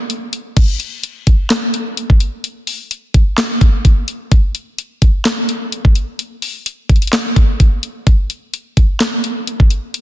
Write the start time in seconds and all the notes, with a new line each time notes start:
0.10 closed hi-hat
0.33 closed hi-hat
0.57 kick, closed hi-hat, crash
0.80 closed hi-hat
1.03 closed hi-hat
1.27 kick, closed hi-hat
1.50 snare, clap, closed hi-hat
1.74 closed hi-hat
1.97 closed hi-hat
2.10 kick
2.20 closed hi-hat
2.44 closed hi-hat
2.67 open hi-hat
2.91 closed hi-hat
3.14 kick, closed hi-hat
3.38 snare, clap, closed hi-hat
3.61 kick, closed hi-hat
3.85 kick, closed hi-hat
4.08 closed hi-hat
4.32 kick, closed hi-hat
4.55 closed hi-hat
4.78 closed hi-hat
5.02 kick, closed hi-hat
5.25 snare, clap, closed hi-hat
5.49 closed hi-hat
5.72 closed hi-hat
5.85 kick
5.95 closed hi-hat
6.19 closed hi-hat
6.42 open hi-hat
6.66 closed hi-hat
6.89 kick, closed hi-hat
6.96 closed hi-hat
7.02 closed hi-hat
7.07 closed hi-hat
7.13 snare, clap, closed hi-hat
7.36 kick, closed hi-hat
7.60 kick, closed hi-hat
7.83 closed hi-hat
8.07 kick, closed hi-hat
8.30 closed hi-hat
8.54 closed hi-hat
8.77 kick, closed hi-hat
9.00 snare, clap, closed hi-hat
9.24 closed hi-hat
9.47 closed hi-hat
9.60 kick
9.70 closed hi-hat
9.94 closed hi-hat